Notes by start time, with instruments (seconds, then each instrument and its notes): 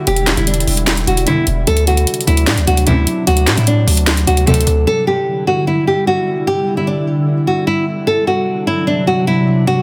Already playing: ambient pad D3 G3 E4
0.07 808-style bass E1, nylon-string guitar G4, closed hi-hat
0.16 closed hi-hat
0.27 snare, clap, closed hi-hat
0.37 808-style bass E1, nylon-string guitar E4, closed hi-hat
0.47 nylon-string guitar D4, closed hi-hat
0.54 closed hi-hat
0.60 closed hi-hat
0.67 808-style bass E1, open hi-hat
0.77 closed hi-hat
0.87 snare, clap, closed hi-hat
0.97 closed hi-hat
1.07 808-style bass E1, nylon-string guitar F#4, closed hi-hat
1.17 closed hi-hat
1.27 string section B1 G2 D3, nylon-string guitar E4, closed hi-hat
1.47 808-style bass E1, closed hi-hat
1.67 808-style bass D2, ambient pad C3 F#3 D4, nylon-string guitar A4, closed hi-hat
1.77 closed hi-hat
1.87 nylon-string guitar F#4, closed hi-hat
1.97 closed hi-hat
2.07 closed hi-hat
2.14 closed hi-hat
2.21 closed hi-hat
2.27 808-style bass D2, nylon-string guitar E4, closed hi-hat
2.37 closed hi-hat
2.47 808-style bass A2, nylon-string guitar D4, snare, clap, closed hi-hat
2.57 808-style bass D2, closed hi-hat
2.67 808-style bass D2, nylon-string guitar F#4, closed hi-hat
2.77 closed hi-hat
2.87 string section A1 F#2 C3, 808-style bass D2, nylon-string guitar E4, closed hi-hat
3.07 closed hi-hat
3.27 808-style bass D2, nylon-string guitar F#4, closed hi-hat
3.37 closed hi-hat
3.47 808-style bass A2, snare, clap, closed hi-hat
3.57 808-style bass A2, nylon-string guitar E4, closed hi-hat
3.67 nylon-string guitar D4, closed hi-hat
3.87 808-style bass D2, open hi-hat
3.97 closed hi-hat
4.07 snare, clap, closed hi-hat
4.17 closed hi-hat
4.27 808-style bass D2, nylon-string guitar F#4, closed hi-hat
4.37 closed hi-hat
4.47 string section A1 F#2 C3, 808-style bass D2, nylon-string guitar A4, closed hi-hat
4.54 closed hi-hat
4.61 closed hi-hat
4.67 808-style bass D2, closed hi-hat
4.87 ambient pad D3 G3 E4, nylon-string guitar A4
5.07 nylon-string guitar G4
5.47 nylon-string guitar F#4
5.67 nylon-string guitar E4
5.87 nylon-string guitar G4
6.07 nylon-string guitar F#4
6.47 nylon-string guitar G4
6.77 nylon-string guitar E4
6.87 nylon-string guitar D4
7.47 nylon-string guitar F#4
7.67 nylon-string guitar E4
8.07 ambient pad C3 F#3 D4, nylon-string guitar A4
8.27 nylon-string guitar F#4
8.67 nylon-string guitar E4
8.87 nylon-string guitar D4
9.07 nylon-string guitar F#4
9.27 nylon-string guitar E4
9.67 nylon-string guitar F#4